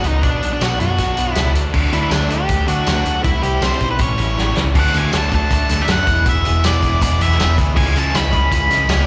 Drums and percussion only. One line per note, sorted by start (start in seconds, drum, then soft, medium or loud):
0.04 closed hi-hat medium
0.23 kick loud
0.23 closed hi-hat medium
0.43 closed hi-hat medium
0.61 snare loud
0.61 closed hi-hat loud
0.61 tambourine loud
0.80 closed hi-hat medium
0.98 kick medium
0.98 closed hi-hat loud
1.17 closed hi-hat medium
1.35 snare loud
1.35 closed hi-hat loud
1.35 tambourine loud
1.55 closed hi-hat medium
1.74 kick loud
1.74 crash medium
1.93 closed hi-hat medium
2.11 snare loud
2.11 closed hi-hat loud
2.11 tambourine loud
2.30 closed hi-hat medium
2.49 kick medium
2.49 closed hi-hat loud
2.68 closed hi-hat medium
2.87 snare loud
2.87 closed hi-hat loud
2.87 tambourine loud
3.05 closed hi-hat medium
3.24 kick loud
3.24 closed hi-hat medium
3.43 closed hi-hat medium
3.62 snare loud
3.62 closed hi-hat medium
3.62 tambourine loud
3.72 snare soft
3.80 kick medium
3.80 closed hi-hat medium
3.99 kick medium
3.99 closed hi-hat loud
4.18 closed hi-hat medium
4.38 snare medium
4.57 snare loud
4.75 kick loud
4.75 crash loud
4.94 closed hi-hat medium
5.13 snare loud
5.13 closed hi-hat loud
5.13 tambourine loud
5.32 kick medium
5.32 closed hi-hat medium
5.51 kick medium
5.51 closed hi-hat loud
5.69 snare soft
5.69 closed hi-hat medium
5.80 snare soft
5.88 snare loud
5.88 closed hi-hat loud
5.88 tambourine loud
6.07 kick loud
6.07 closed hi-hat medium
6.26 kick loud
6.26 closed hi-hat medium
6.45 closed hi-hat medium
6.64 snare loud
6.64 closed hi-hat loud
6.64 tambourine loud
6.83 kick medium
6.83 closed hi-hat medium
7.02 kick medium
7.02 closed hi-hat loud
7.21 snare soft
7.21 closed hi-hat medium
7.31 snare soft
7.40 snare loud
7.40 closed hi-hat loud
7.40 tambourine loud
7.58 kick loud
7.58 closed hi-hat medium
7.77 kick loud
7.77 crash loud
7.96 closed hi-hat medium
8.15 snare loud
8.15 closed hi-hat loud
8.15 tambourine loud
8.33 kick medium
8.33 closed hi-hat medium
8.52 kick medium
8.52 closed hi-hat loud
8.71 snare soft
8.71 closed hi-hat medium
8.89 snare loud
8.89 closed hi-hat loud
8.89 tambourine loud